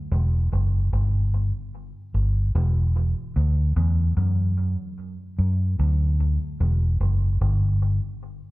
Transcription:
0, 0, Header, 1, 2, 480
1, 0, Start_track
1, 0, Key_signature, 1, "minor"
1, 0, Tempo, 809717
1, 63, Time_signature, 4, 2, 24, 8
1, 5045, End_track
2, 0, Start_track
2, 0, Title_t, "Fingered electric bass"
2, 0, Program_c, 0, 33
2, 69, Note_on_c, 0, 28, 108
2, 295, Note_off_c, 0, 28, 0
2, 312, Note_on_c, 0, 30, 97
2, 537, Note_off_c, 0, 30, 0
2, 550, Note_on_c, 0, 31, 95
2, 893, Note_off_c, 0, 31, 0
2, 1271, Note_on_c, 0, 31, 93
2, 1497, Note_off_c, 0, 31, 0
2, 1512, Note_on_c, 0, 28, 109
2, 1854, Note_off_c, 0, 28, 0
2, 1993, Note_on_c, 0, 38, 103
2, 2218, Note_off_c, 0, 38, 0
2, 2231, Note_on_c, 0, 40, 102
2, 2457, Note_off_c, 0, 40, 0
2, 2471, Note_on_c, 0, 42, 98
2, 2814, Note_off_c, 0, 42, 0
2, 3193, Note_on_c, 0, 42, 86
2, 3418, Note_off_c, 0, 42, 0
2, 3434, Note_on_c, 0, 38, 99
2, 3776, Note_off_c, 0, 38, 0
2, 3915, Note_on_c, 0, 28, 112
2, 4140, Note_off_c, 0, 28, 0
2, 4152, Note_on_c, 0, 30, 87
2, 4378, Note_off_c, 0, 30, 0
2, 4394, Note_on_c, 0, 31, 98
2, 4736, Note_off_c, 0, 31, 0
2, 5045, End_track
0, 0, End_of_file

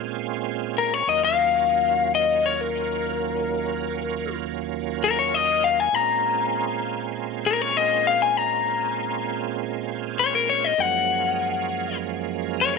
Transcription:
0, 0, Header, 1, 3, 480
1, 0, Start_track
1, 0, Key_signature, -5, "minor"
1, 0, Tempo, 606673
1, 847, Time_signature, 4, 2, 24, 8
1, 10115, End_track
2, 0, Start_track
2, 0, Title_t, "Lead electric guitar"
2, 0, Program_c, 0, 29
2, 619, Note_on_c, 0, 70, 89
2, 741, Note_off_c, 0, 70, 0
2, 741, Note_on_c, 0, 73, 73
2, 851, Note_off_c, 0, 73, 0
2, 861, Note_on_c, 0, 75, 79
2, 971, Note_off_c, 0, 75, 0
2, 985, Note_on_c, 0, 77, 91
2, 1676, Note_off_c, 0, 77, 0
2, 1699, Note_on_c, 0, 75, 75
2, 1927, Note_off_c, 0, 75, 0
2, 1944, Note_on_c, 0, 73, 77
2, 2066, Note_off_c, 0, 73, 0
2, 2066, Note_on_c, 0, 70, 87
2, 3467, Note_off_c, 0, 70, 0
2, 3987, Note_on_c, 0, 70, 92
2, 4096, Note_off_c, 0, 70, 0
2, 4104, Note_on_c, 0, 73, 89
2, 4228, Note_off_c, 0, 73, 0
2, 4228, Note_on_c, 0, 75, 92
2, 4452, Note_off_c, 0, 75, 0
2, 4463, Note_on_c, 0, 77, 88
2, 4588, Note_off_c, 0, 77, 0
2, 4588, Note_on_c, 0, 80, 87
2, 4705, Note_off_c, 0, 80, 0
2, 4705, Note_on_c, 0, 82, 101
2, 5630, Note_off_c, 0, 82, 0
2, 5905, Note_on_c, 0, 70, 94
2, 6025, Note_off_c, 0, 70, 0
2, 6025, Note_on_c, 0, 73, 83
2, 6148, Note_off_c, 0, 73, 0
2, 6148, Note_on_c, 0, 75, 90
2, 6372, Note_off_c, 0, 75, 0
2, 6386, Note_on_c, 0, 77, 81
2, 6496, Note_off_c, 0, 77, 0
2, 6505, Note_on_c, 0, 80, 81
2, 6624, Note_off_c, 0, 80, 0
2, 6624, Note_on_c, 0, 82, 88
2, 7548, Note_off_c, 0, 82, 0
2, 8065, Note_on_c, 0, 73, 87
2, 8175, Note_off_c, 0, 73, 0
2, 8189, Note_on_c, 0, 70, 81
2, 8296, Note_off_c, 0, 70, 0
2, 8304, Note_on_c, 0, 73, 91
2, 8422, Note_off_c, 0, 73, 0
2, 8422, Note_on_c, 0, 75, 89
2, 8547, Note_off_c, 0, 75, 0
2, 8547, Note_on_c, 0, 78, 96
2, 9469, Note_off_c, 0, 78, 0
2, 9980, Note_on_c, 0, 73, 103
2, 10091, Note_off_c, 0, 73, 0
2, 10115, End_track
3, 0, Start_track
3, 0, Title_t, "Tonewheel organ"
3, 0, Program_c, 1, 16
3, 0, Note_on_c, 1, 46, 60
3, 0, Note_on_c, 1, 56, 61
3, 0, Note_on_c, 1, 60, 60
3, 0, Note_on_c, 1, 61, 57
3, 0, Note_on_c, 1, 65, 69
3, 815, Note_off_c, 1, 46, 0
3, 815, Note_off_c, 1, 56, 0
3, 817, Note_off_c, 1, 60, 0
3, 817, Note_off_c, 1, 61, 0
3, 818, Note_off_c, 1, 65, 0
3, 845, Note_on_c, 1, 39, 64
3, 847, Note_on_c, 1, 54, 54
3, 850, Note_on_c, 1, 61, 57
3, 851, Note_on_c, 1, 58, 57
3, 852, Note_on_c, 1, 65, 69
3, 4658, Note_off_c, 1, 39, 0
3, 4659, Note_off_c, 1, 54, 0
3, 4661, Note_off_c, 1, 58, 0
3, 4661, Note_off_c, 1, 61, 0
3, 4661, Note_off_c, 1, 65, 0
3, 4689, Note_on_c, 1, 46, 64
3, 4690, Note_on_c, 1, 56, 56
3, 4693, Note_on_c, 1, 60, 62
3, 4693, Note_on_c, 1, 61, 60
3, 4695, Note_on_c, 1, 65, 70
3, 8497, Note_off_c, 1, 46, 0
3, 8497, Note_off_c, 1, 56, 0
3, 8499, Note_off_c, 1, 60, 0
3, 8499, Note_off_c, 1, 61, 0
3, 8500, Note_off_c, 1, 65, 0
3, 8530, Note_on_c, 1, 42, 67
3, 8531, Note_on_c, 1, 56, 57
3, 8532, Note_on_c, 1, 58, 59
3, 8533, Note_on_c, 1, 61, 57
3, 8536, Note_on_c, 1, 53, 68
3, 10115, Note_off_c, 1, 42, 0
3, 10115, Note_off_c, 1, 53, 0
3, 10115, Note_off_c, 1, 56, 0
3, 10115, Note_off_c, 1, 58, 0
3, 10115, Note_off_c, 1, 61, 0
3, 10115, End_track
0, 0, End_of_file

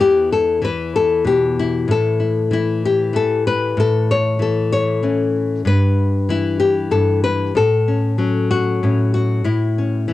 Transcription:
0, 0, Header, 1, 2, 480
1, 0, Start_track
1, 0, Tempo, 629591
1, 4, Time_signature, 6, 3, 24, 8
1, 7725, End_track
2, 0, Start_track
2, 0, Title_t, "Nylon-string guitar"
2, 0, Program_c, 0, 24
2, 0, Note_on_c, 0, 40, 75
2, 0, Note_on_c, 0, 52, 51
2, 1, Note_on_c, 0, 59, 50
2, 4, Note_on_c, 0, 67, 94
2, 5, Note_on_c, 0, 64, 49
2, 243, Note_off_c, 0, 67, 0
2, 247, Note_on_c, 0, 69, 86
2, 466, Note_off_c, 0, 52, 0
2, 469, Note_on_c, 0, 52, 67
2, 485, Note_off_c, 0, 69, 0
2, 492, Note_on_c, 0, 71, 97
2, 726, Note_off_c, 0, 71, 0
2, 729, Note_on_c, 0, 69, 92
2, 950, Note_on_c, 0, 47, 65
2, 964, Note_off_c, 0, 69, 0
2, 967, Note_on_c, 0, 67, 95
2, 1212, Note_off_c, 0, 64, 0
2, 1215, Note_on_c, 0, 64, 86
2, 1413, Note_off_c, 0, 59, 0
2, 1428, Note_off_c, 0, 40, 0
2, 1431, Note_on_c, 0, 45, 77
2, 1436, Note_off_c, 0, 47, 0
2, 1445, Note_off_c, 0, 67, 0
2, 1449, Note_off_c, 0, 64, 0
2, 1456, Note_on_c, 0, 69, 102
2, 1675, Note_on_c, 0, 64, 46
2, 1909, Note_off_c, 0, 52, 0
2, 1912, Note_on_c, 0, 52, 64
2, 1928, Note_off_c, 0, 64, 0
2, 1931, Note_on_c, 0, 64, 88
2, 2166, Note_off_c, 0, 64, 0
2, 2176, Note_on_c, 0, 67, 95
2, 2387, Note_off_c, 0, 52, 0
2, 2387, Note_on_c, 0, 52, 64
2, 2399, Note_off_c, 0, 69, 0
2, 2408, Note_on_c, 0, 69, 97
2, 2642, Note_off_c, 0, 69, 0
2, 2645, Note_on_c, 0, 71, 100
2, 2847, Note_off_c, 0, 45, 0
2, 2874, Note_on_c, 0, 45, 74
2, 2888, Note_off_c, 0, 67, 0
2, 2895, Note_on_c, 0, 69, 106
2, 3123, Note_off_c, 0, 71, 0
2, 3133, Note_on_c, 0, 73, 97
2, 3348, Note_off_c, 0, 52, 0
2, 3348, Note_on_c, 0, 52, 63
2, 3361, Note_off_c, 0, 69, 0
2, 3370, Note_on_c, 0, 69, 94
2, 3593, Note_off_c, 0, 73, 0
2, 3602, Note_on_c, 0, 73, 100
2, 3823, Note_off_c, 0, 52, 0
2, 3832, Note_on_c, 0, 52, 62
2, 3837, Note_on_c, 0, 61, 48
2, 4085, Note_off_c, 0, 69, 0
2, 4287, Note_off_c, 0, 52, 0
2, 4288, Note_off_c, 0, 45, 0
2, 4290, Note_off_c, 0, 61, 0
2, 4308, Note_on_c, 0, 43, 81
2, 4321, Note_off_c, 0, 73, 0
2, 4325, Note_on_c, 0, 71, 111
2, 4795, Note_on_c, 0, 52, 64
2, 4805, Note_on_c, 0, 64, 90
2, 5026, Note_off_c, 0, 64, 0
2, 5029, Note_on_c, 0, 67, 95
2, 5260, Note_off_c, 0, 43, 0
2, 5268, Note_on_c, 0, 43, 64
2, 5269, Note_off_c, 0, 71, 0
2, 5272, Note_on_c, 0, 69, 90
2, 5514, Note_off_c, 0, 69, 0
2, 5517, Note_on_c, 0, 71, 94
2, 5726, Note_off_c, 0, 43, 0
2, 5755, Note_off_c, 0, 67, 0
2, 5756, Note_on_c, 0, 45, 84
2, 5757, Note_off_c, 0, 52, 0
2, 5759, Note_off_c, 0, 71, 0
2, 5768, Note_on_c, 0, 69, 102
2, 6006, Note_on_c, 0, 61, 44
2, 6237, Note_on_c, 0, 54, 67
2, 6238, Note_off_c, 0, 61, 0
2, 6241, Note_on_c, 0, 61, 50
2, 6483, Note_off_c, 0, 69, 0
2, 6486, Note_on_c, 0, 66, 93
2, 6718, Note_off_c, 0, 45, 0
2, 6721, Note_off_c, 0, 61, 0
2, 6730, Note_on_c, 0, 45, 64
2, 6736, Note_on_c, 0, 61, 49
2, 6958, Note_off_c, 0, 66, 0
2, 6967, Note_on_c, 0, 66, 87
2, 7170, Note_off_c, 0, 54, 0
2, 7178, Note_off_c, 0, 45, 0
2, 7200, Note_on_c, 0, 45, 80
2, 7202, Note_off_c, 0, 61, 0
2, 7204, Note_off_c, 0, 66, 0
2, 7205, Note_on_c, 0, 64, 78
2, 7459, Note_on_c, 0, 61, 44
2, 7676, Note_off_c, 0, 61, 0
2, 7684, Note_on_c, 0, 52, 68
2, 7687, Note_on_c, 0, 61, 48
2, 7725, Note_off_c, 0, 45, 0
2, 7725, Note_off_c, 0, 52, 0
2, 7725, Note_off_c, 0, 61, 0
2, 7725, Note_off_c, 0, 64, 0
2, 7725, End_track
0, 0, End_of_file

